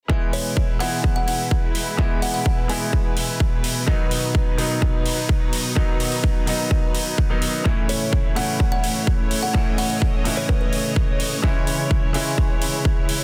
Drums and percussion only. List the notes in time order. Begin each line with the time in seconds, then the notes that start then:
0.10 kick
0.33 open hi-hat
0.57 kick
0.80 open hi-hat
1.04 kick
1.28 open hi-hat
1.51 kick
1.75 open hi-hat
1.99 kick
2.22 open hi-hat
2.34 open hi-hat
2.46 kick
2.69 open hi-hat
2.93 kick
3.17 open hi-hat
3.40 kick
3.64 open hi-hat
3.88 kick
4.11 open hi-hat
4.35 kick
4.58 open hi-hat
4.82 kick
5.06 open hi-hat
5.29 kick
5.53 open hi-hat
5.76 kick
6.00 open hi-hat
6.12 open hi-hat
6.24 kick
6.47 open hi-hat
6.71 kick
6.95 open hi-hat
7.18 kick
7.42 open hi-hat
7.65 kick
7.89 open hi-hat
8.13 kick
8.36 open hi-hat
8.60 kick
8.84 open hi-hat
9.07 kick
9.31 open hi-hat
9.54 kick
9.78 open hi-hat
9.90 open hi-hat
10.02 kick
10.25 open hi-hat
10.49 kick
10.73 open hi-hat
10.96 kick
11.20 open hi-hat
11.44 kick
11.67 open hi-hat
11.91 kick
12.14 open hi-hat
12.38 kick
12.62 open hi-hat
12.85 kick
13.09 open hi-hat